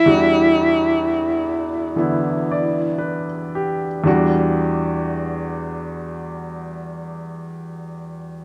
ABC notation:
X:1
M:4/4
L:1/16
Q:"Swing" 1/4=54
K:Em
V:1 name="Alto saxophone"
E12 z4 | z16 |]
V:2 name="Grand piano"
z8 z2 d2 B2 G2- | G z12 z3 |]
V:3 name="Grand piano" clef=bass
[E,,E,G,DF]8 [D,E,B,E]8 | [E,,E,G,DF]16 |]